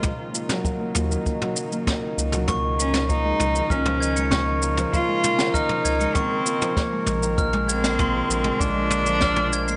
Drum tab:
SH |x-xxx-xxx-xxx-xx|x-xxx-xxx-xxx-xx|x-xxx-xxx-xxx-xx|x-xxx-x-x-xxx-xx|
SD |---o--------o---|---o--------o---|---o--------o---|---o--------o---|
T2 |o--o--o--o--o--o|o--o--o--o--o--o|--o--o--o--o--o-|-o--o--o--o--o--|
BD |o---o---o---o---|o---o---o---o---|o---o---o---o---|o---o---o---o---|